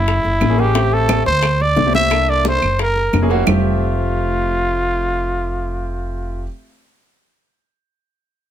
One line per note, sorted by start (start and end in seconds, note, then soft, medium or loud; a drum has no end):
0.00 0.22 F#1 medium
0.00 0.61 E4 loud
0.07 high bongo medium
0.07 high conga soft
0.24 0.40 F#1 medium
0.24 high bongo soft
0.24 high conga soft
0.41 1.21 A1 medium
0.41 high bongo soft
0.41 low bongo medium
0.41 high conga medium
0.41 claves medium
0.49 0.55 A#3 medium
0.49 0.56 C#4 medium
0.49 0.56 E4 medium
0.49 0.56 G#4 medium
0.57 0.70 A#3 medium
0.57 0.70 C#4 medium
0.57 0.70 E4 medium
0.57 0.95 G4 medium
0.57 0.70 G#4 medium
0.57 high bongo soft
0.74 1.22 A3 medium
0.74 1.23 C4 medium
0.74 1.23 E4 medium
0.74 1.23 G4 medium
0.74 high bongo medium
0.74 high conga soft
0.92 1.26 A4 loud
0.92 high conga soft
1.09 high bongo medium
1.09 high conga medium
1.09 claves medium
1.26 1.74 D2 medium
1.26 1.63 C5 loud
1.26 high bongo soft
1.26 high conga soft
1.43 high bongo medium
1.43 high conga soft
1.43 claves medium
1.60 1.94 D5 loud
1.60 high bongo soft
1.60 high conga soft
1.76 2.57 C2 medium
1.76 high bongo soft
1.76 low bongo medium
1.76 high conga medium
1.86 1.92 A3 medium
1.86 1.92 C4 medium
1.86 1.92 E4 medium
1.86 1.92 G4 medium
1.93 2.06 A3 medium
1.93 2.06 C4 medium
1.93 2.06 E4 medium
1.93 2.06 G4 medium
1.93 2.31 E5 loud
1.93 high bongo soft
1.93 high conga medium
2.11 2.59 A#3 medium
2.11 2.59 D4 medium
2.11 2.59 E4 medium
2.11 2.59 A4 medium
2.11 high bongo medium
2.11 high conga soft
2.11 claves medium
2.29 2.46 D5 loud
2.29 high conga soft
2.45 2.78 C5 medium
2.45 high bongo medium
2.45 high conga medium
2.62 3.10 F#1 medium
2.62 high bongo soft
2.62 high conga soft
2.62 claves medium
2.79 3.28 A#4 medium
2.79 high bongo medium
2.79 high conga soft
2.96 high bongo soft
2.96 high conga soft
3.13 3.43 F1 medium
3.13 high bongo soft
3.13 low bongo medium
3.13 high conga medium
3.13 claves medium
3.22 3.28 A#3 medium
3.22 3.28 C#4 medium
3.22 3.28 E4 medium
3.22 3.28 G#4 medium
3.30 3.42 A#3 loud
3.30 3.42 C#4 medium
3.30 3.42 E4 medium
3.30 3.43 F#4 loud
3.30 high bongo soft
3.45 6.45 F1 medium
3.45 6.42 A3 medium
3.45 6.43 C4 medium
3.45 6.46 F4 medium
3.45 6.45 E5 medium
3.45 low bongo loud
3.45 low conga medium
3.45 claves medium
3.49 6.46 G4 medium